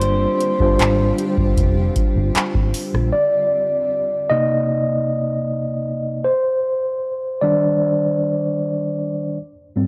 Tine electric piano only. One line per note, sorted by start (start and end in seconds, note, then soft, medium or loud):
0.00 0.40 G3 medium
0.00 0.41 D4 medium
0.00 0.41 F4 medium
0.00 0.41 C5 medium
0.60 1.67 G3 medium
0.60 1.67 D4 medium
0.60 1.68 F4 medium
0.60 1.68 C5 loud
3.13 4.33 D5 medium
4.30 6.21 C3 soft
4.30 6.21 A#3 soft
4.30 6.22 D#4 medium
4.30 6.30 D#5 loud
6.24 7.45 C5 medium
7.41 9.33 D#3 medium
7.41 9.33 G3 soft
7.41 9.33 D4 medium
7.41 8.93 D5 medium
9.76 9.87 G#2 medium
9.76 9.87 G3 soft
9.76 9.87 C4 medium